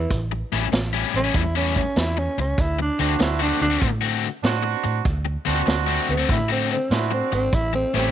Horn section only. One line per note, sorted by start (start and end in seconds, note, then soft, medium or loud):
2.99 3.69 C4 medium
2.99 3.70 D4 medium
2.99 3.70 F#4 medium
4.43 5.01 C4 medium
4.43 5.01 D4 medium
4.43 5.02 F#4 medium
5.46 6.16 C4 medium
5.46 6.17 D4 medium
5.46 6.17 F#4 loud
6.90 7.48 C4 medium
6.90 7.49 D4 medium
6.90 7.49 F#4 medium
7.94 8.11 A3 medium
7.94 8.11 C#4 medium
7.94 8.11 G4 medium